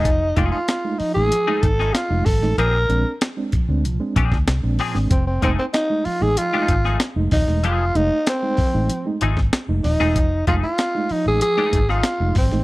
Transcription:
<<
  \new Staff \with { instrumentName = "Tenor saxophone" } { \time 4/4 \key bes \major \tempo 4 = 95 ees'8 f'16 f'8. ees'16 gis'8. a'8 f'8 a'8 | bes'4 r2. | c'16 c'16 c'16 c'16 ees'8 f'16 gis'16 f'4 r8 ees'8 | f'8 ees'8 c'4. r4 ees'8~ |
ees'8 f'16 f'8. ees'16 gis'16 gis'8. f'8. c'8 | }
  \new Staff \with { instrumentName = "Clean electric guitar" } { \time 4/4 \key bes \major r8 <f a ees' gis'>16 r4. <f a ees' gis'>16 r16 <f a ees' gis'>16 r4 | <f c' d' aes'>16 r2 r16 <f c' d' aes'>16 r8. <f c' d' aes'>16 r16 | r8 <f a ees' gis'>16 r4. <f a ees' gis'>16 r16 <f a ees' gis'>16 r4 | <f a ees' gis'>16 r2 r16 <f a ees' gis'>16 r4 <f a ees' gis'>16 |
r8 <f a ees' gis'>16 r4. <f a ees' gis'>16 r16 <f a ees' gis'>16 r4 | }
  \new Staff \with { instrumentName = "Reed electric piano" } { \time 4/4 \key bes \major << { r8 <gis a ees'>16 <a ees'>16 r16 <gis a ees'>16 r16 <gis a ees'>16 r16 <gis a ees'>16 <a ees'>16 r8 <gis a ees'>16 r16 <gis a ees'>16 | r8 <aes c' d'>16 <c' d'>16 r16 <aes c' d'>16 r16 <aes c' d'>16 r16 <aes c' d'>16 <c' d'>16 r8 <aes c' d'>16 r16 <aes c' d'>16 | r8 <gis a ees'>16 <a ees'>16 r16 <gis a ees'>16 r16 <gis a ees'>16 r16 <gis a ees'>16 <a ees'>16 r8 <gis a ees'>16 r16 <gis a ees'>16 | r8 <gis a ees'>16 <a ees'>16 r16 <gis a ees'>16 r16 <gis a ees'>16 r16 <gis a ees'>16 <a ees'>16 r8 <gis a ees'>16 r16 <gis a ees'>16 |
r8 <gis a ees'>16 <a ees'>16 r16 <gis a ees'>16 r16 <gis a ees'>16 r16 <gis a ees'>16 <a ees'>16 r8 <gis a ees'>16 r16 <gis a ees'>16 | } \\ { r4. f8 f8 r4 f8 | <bes, f>8 r4 <bes, f>8 <bes, f>8 r4 <bes, f>8 | f8 r4 f8 f8 r4 f8 | f8 r4 f8 f8 r4 f8 |
f8 r4 f8 f8 r4 f8 | } >> }
  \new Staff \with { instrumentName = "Fingered electric bass" } { \clef bass \time 4/4 \key bes \major f,,8 f,,16 r4 a,,16 r8 gis,,8 r16 f,,16 gis,,16 a,,16 | bes,,8 bes,,16 r4 d,16 c,16 r16 bes,,16 d,16 c,16 bes,,16 r16 aes,,16 | f,,8 f,,16 r4 a,,16 r8 gis,,8 r16 f,,16 ees,,16 e,,16 | f,,8 f,,16 r4 a,,16 r8 gis,,8 r16 f,,16 ees,,16 e,,16 |
f,,8 f,,16 r4 a,,16 r8 gis,,8 r16 f,,16 gis,,16 a,,16 | }
  \new DrumStaff \with { instrumentName = "Drums" } \drummode { \time 4/4 <hh bd>8 <hh bd>8 <hh sn>8 hho8 hh8 <hh bd>16 sn16 <hh sn>8 <hho bd sn>16 sn16 | hh8 hh8 <hh sn>8 <hh bd>8 hh8 <hh bd>16 <bd sn>16 <hh sn>8 <hho sn>16 sn16 | <hh bd>8 <hh bd>8 <hh sn>8 hho8 hh8 <hh bd>16 sn16 <hh sn>8 <hho bd sn>16 sn16 | hh8 hh8 <hh sn>8 <hho bd>8 hh8 hh16 <bd sn>16 <hh sn>8 <hho sn>16 sn16 |
<hh bd>8 <hh bd>8 <hh sn>8 hho8 hh8 <hh bd>16 sn16 <hh sn>8 <hho bd sn>16 sn16 | }
>>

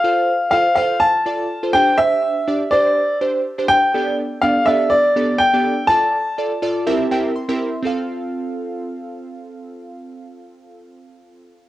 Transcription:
<<
  \new Staff \with { instrumentName = "Grand piano" } { \time 4/4 \key f \major \tempo 4 = 123 f''4 f''8 f''8 a''4. g''8 | e''4. d''4 r4 g''8~ | g''8 r8 f''8 e''8 d''4 g''4 | a''2. r4 |
r1 | r1 | }
  \new Staff \with { instrumentName = "Synth keys" } { \time 4/4 \key f \major << { r1 | r1 | r1 | r2 r8 g''8 c'''4 |
r1 | r1 | } \\ { <f' a' c''>8 r8 <f' a' c''>16 r16 <f' a' c''>8 r8 <f' a' d''>8 r16 <f' a' c''>16 <d' g' c''>8~ | <d' g' c''>8. r16 <d' g' d''>16 r16 <d' g' c''>8 r8 <d' g' c''>8 r16 <d' g' c''>8 r16 | <b d' g' a' d''>8 r8 <b d' g' a' d''>16 r16 <b d' g' a' d''>8 r8 <b d' g' a' d''>8 r16 <b d' g' a' d''>8 r16 | <f' a' d''>8 r8 <f' a' d''>16 r16 <f' a' d''>8 <c' e' g' bes' e''>8 <c' e' g' bes' e''>8 r16 <c' e' g' bes' e''>8 r16 |
<c' f' a' f''>1~ | <c' f' a' f''>1 | } >> }
>>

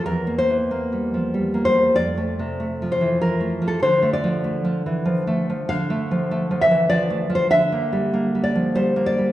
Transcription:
\new Staff \with { instrumentName = "Nylon-string guitar" } { \time 3/4 \key d \minor \tempo 4 = 96 << { bes'8 c''2 c''8 | d''4. c''8 bes'8. a'16 | c''8 d''2 r8 | f''4. e''8 d''8. c''16 |
e''4. d''8 c''8 d''8 | } \\ { \tuplet 3/2 { e,8 bes8 e8 bes8 g8 f8 g8 bes8 g8 } | \tuplet 3/2 { f,8 a8 c8 a8 f8 e8 f8 a8 f8 } | \tuplet 3/2 { d8 a8 f8 a8 f8 e8 f8 a8 f8 } | \tuplet 3/2 { d8 a8 f8 a8 f8 e8 f8 a8 f8 } |
\tuplet 3/2 { d8 bes8 g8 bes8 g8 f8 g8 bes8 g8 } | } >> }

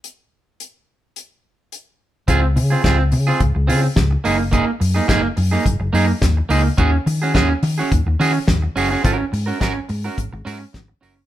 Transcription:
<<
  \new Staff \with { instrumentName = "Clean electric guitar" } { \time 4/4 \key des \major \tempo 4 = 107 r1 | <c' f' aes'>16 r8 <c' f' aes'>16 <c' f' aes'>16 r8 <c' f' aes'>16 r8 <c' f' aes'>16 r8. <bes ees' aes'>16 r16 | <bes ees' aes'>16 r8 <bes ees' aes'>16 <bes ees' aes'>16 r8 <bes ees' aes'>16 r8 <bes ees' aes'>16 r8. <bes ees' aes'>16 r16 | <des' ges' aes'>16 r8 <des' ges' aes'>16 <des' ges' aes'>16 r8 <des' ges' aes'>16 r8 <des' ges' aes'>16 r8. <des' ges' aes'>16 <des' ges' aes'>16 |
<des' ges' bes'>16 r8 <des' ges' bes'>16 <des' ges' bes'>16 r8 <des' ges' bes'>16 r8 <des' ges' bes'>16 r8. <des' ges' bes'>16 r16 | }
  \new Staff \with { instrumentName = "Fingered electric bass" } { \clef bass \time 4/4 \key des \major r1 | des,8 des8 des,8 des8 des,16 des,16 des8 des,8 ges,,8~ | ges,,8 ges,8 ges,,8 ges,8 ges,,16 ges,,16 ges,8 ees,8 des,8 | ees,8 ees8 ees,8 ees8 ees,16 ees,16 ees8 ees,8 ges,,8 |
aes,,8 aes,8 aes,,8 aes,8 aes,,16 aes,,16 aes,8 aes,,8 ges,,8 | }
  \new DrumStaff \with { instrumentName = "Drums" } \drummode { \time 4/4 hh4 hh4 hh4 hh4 | <hh bd>8 hho8 <hh bd sn>8 hho8 <hh bd>8 hho8 <hh bd sn>8 hho8 | <hh bd>8 hho8 <hh bd sn>8 hho8 <hh bd>8 hho8 <hh bd sn>8 hho8 | <hh bd>8 hho8 <hh bd sn>8 hho8 <hh bd>8 hho8 <hh bd sn>8 hho8 |
<hh bd>8 hho8 <hh bd sn>8 hho8 <hh bd>8 hho8 <hh bd sn>8 hho8 | }
>>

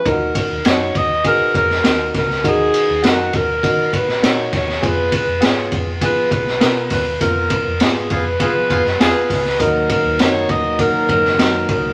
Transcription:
<<
  \new Staff \with { instrumentName = "Alto saxophone" } { \time 4/4 \key ees \minor \tempo 4 = 101 bes'8 bes'8 des''8 ees''8 bes'8 bes'4 bes'8 | aes'4 ges'8 bes'4 ces''8 des''8 des''8 | ces''8 ces''8 des''8 r8 ces''8 ces''4 ces''8 | bes'4 aes'8 ces''4. ces''8 ces''8 |
bes'8 bes'8 des''8 ees''8 bes'8 bes'4 bes'8 | }
  \new Staff \with { instrumentName = "Upright piano" } { \time 4/4 \key ees \minor <ees' f' ges' bes'>8. r16 <ees' ges' des''>8. r16 <ees' ges' aes'>8. r16 <ees' ges' bes'>8. r16 | <ees' ges' bes'>8. r16 <ees' ges' a' bes'>8. r16 <ees' ges' bes'>8. r16 <ees' ges' bes'>8. r16 | <ces' f' aes'>8. r16 <ces' f' aes'>8. r16 <ces' f' aes'>8. r16 <ces' f' bes'>8. r16 | <ces' f' bes'>8. r16 <ces' f' aes'>8. r16 <ces' f' aes'>8. r16 <ces' f' aes'>8. r16 |
<ees' ges' bes'>8. r16 <ees' ges' bes'>8. r16 <ees' ges' bes'>8. r16 <ees' ges' bes'>8. r16 | }
  \new Staff \with { instrumentName = "Upright piano" } { \clef bass \time 4/4 \key ees \minor ees4. r2 r8 | ees4. r2 r8 | r1 | r1 |
ees4. r2 r8 | }
  \new Staff \with { instrumentName = "Horn section" } { \time 4/4 \key ees \minor r1 | r1 | r1 | r4. <ces' f' aes'>16 r16 <ces' f' aes'>16 r16 <ces' f' aes'>16 r16 <ces' f' aes'>8. r16 |
r1 | }
  \new Staff \with { instrumentName = "Tonewheel organ" } { \clef bass \time 4/4 \key ees \minor r1 | r1 | r1 | r1 |
<ees ges bes ees'>1 | }
  \new Staff \with { instrumentName = "Fingered electric bass" } { \clef bass \time 4/4 \key ees \minor ees,8 r16 ees,16 ges,8 ees,8 r8 f,8 ees,8 des,8 | ees,8 r16 ees,16 ges,8 ees,8 ees8 bes,,8 bes,8 ees,8 | f,8 r16 f,16 aes,8 f,8 f8 ces,8 ces8 ees,8 | f,8 r16 f,16 r8 f,8 r16 f16 f,16 ges,16 f,16 r16 des,8 |
ees,8 r16 ees,16 ges,8 ees,8. r16 ges,16 ges,,16 ges,8 des,8 | }
  \new DrumStaff \with { instrumentName = "Drums" } \drummode { \time 4/4 <bd cymr>8 <bd cymr>8 <cymr sn>8 <bd cymr>8 <bd cymr>8 <bd cymr>16 sn16 <cymr sn>8 <bd cymr sn>16 sn16 | <bd cymr>8 cymr8 <cymr sn>8 <bd cymr>8 <bd cymr>8 <bd cymr>16 sn16 <cymr sn>8 <bd cymr sn>16 sn16 | <bd cymr>8 <bd cymr>8 <cymr sn>8 <bd cymr>8 <bd cymr>8 <bd cymr>16 sn16 <cymr sn>8 <hho bd cymr sn>8 | <hhp bd cymr>8 <bd cymr>8 <cymr sn>8 <bd cymr>8 <bd cymr>8 <bd cymr>16 sn16 <cymr sn>8 <hho bd cymr sn>16 sn16 |
<hhp bd cymr>8 <bd cymr>8 <cymr sn>8 <bd cymr>8 <bd cymr>8 <bd cymr>16 sn16 <cymr sn>8 <bd cymr>8 | }
>>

